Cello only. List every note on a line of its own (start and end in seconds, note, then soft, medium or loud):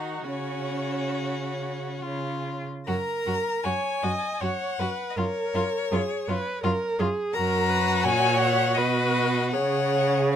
0.00 0.24 D#3 medium
0.25 1.99 C#3 medium
2.03 2.65 C#3 medium
2.88 2.96 F#2 medium
3.27 3.35 F#2 medium
3.65 3.73 F#2 medium
4.03 4.11 F#2 medium
4.41 4.49 F#2 medium
4.79 4.87 F#2 medium
5.17 5.25 F#2 medium
5.54 5.62 F#2 medium
5.92 6.00 F#2 medium
6.28 6.36 F#2 medium
6.64 6.72 F#2 medium
6.99 7.07 F#2 medium
7.34 8.06 F#2 medium
8.04 8.78 A#2 medium
8.76 9.55 B2 medium
9.53 10.36 C#3 medium